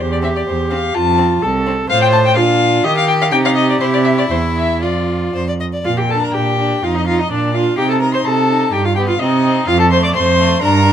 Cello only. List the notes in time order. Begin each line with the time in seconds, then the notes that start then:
0.00 E2
0.47 E2
0.95 F2
1.43 C2
1.90 A2
2.37 A#2
2.85 D#3
3.33 C3
3.81 C3
4.31 E2
4.82 F2
5.34 F2
5.86 A#2
6.35 A#2
6.83 F2
7.31 A#2
7.78 C3
8.26 C3
8.74 G2
9.21 C3
9.68 F2
10.16 F2
10.63 G2